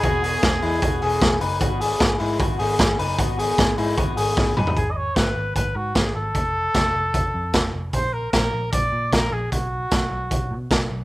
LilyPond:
<<
  \new Staff \with { instrumentName = "Trumpet" } { \time 4/4 \key gis \minor \tempo 4 = 152 gis'2.~ gis'8 r8 | r1 | r1 | gis'16. dis''32 cis''8 b'4 b'8 fis'8 gis'8 a'8~ |
a'2.~ a'8 r8 | bis'8 ais'8 ais'4 d''4 ais'8 gis'8 | fis'2~ fis'8. r4 r16 | }
  \new Staff \with { instrumentName = "Clean electric guitar" } { \time 4/4 \key gis \minor <b fis'>8 <b gis'>4 <gis e'>8 <b fis'>8 <b gis'>4 <dis' b'>8 | <b fis'>8 <b gis'>4 <gis e'>8 <b fis'>8 <b gis'>4 <dis' b'>8 | <b fis'>8 <b gis'>4 <gis e'>8 <b fis'>8 <b gis'>4 <dis' b'>8 | r1 |
r1 | r1 | r1 | }
  \new Staff \with { instrumentName = "Picked electric bass" } { \clef bass \time 4/4 \key gis \minor e,,4 e,,8 e,8 e,,8 e,,8 e,,8 fis,,8 | gis,,4 gis,,8 gis,8 gis,,8 gis,,8 gis,,8 fis,,8 | gis,,4 gis,,8 gis,8 gis,,8 gis,,8 gis,,8 fis,,8 | gis,,4 gis,,8 gis,,8 gis,,8 gis,8 gis,,8 gis,,8 |
f,,4 f,,8 f,,8 f,,8 f,8 f,,8 f,,8 | ais,,4 ais,,8 ais,,8 ais,,8 ais,8 ais,,8 ais,,8 | b,,4 b,,8 b,,8 b,,8 b,8 b,,8 b,,8 | }
  \new DrumStaff \with { instrumentName = "Drums" } \drummode { \time 4/4 <hh bd>8 hho8 <hh bd sn>8 hho8 <hh bd>8 hho8 <hh bd sn>8 hho8 | <hh bd>8 hho8 <hh bd sn>8 hho8 <hh bd>8 hho8 <hh bd sn>8 hho8 | <hh bd>8 hho8 <hh bd sn>8 hho8 <hh bd>8 hho8 <bd sn>8 toml16 tomfh16 | <hh bd>4 <hh bd sn>4 <hh bd>4 <hh bd sn>4 |
<hh bd>4 <hh bd sn>4 <hh bd>4 <hh bd sn>4 | <hh bd>4 <hh bd sn>4 <hh bd>4 <hh bd sn>4 | <hh bd>4 <hh bd sn>4 <hh bd>4 <hh bd sn>4 | }
>>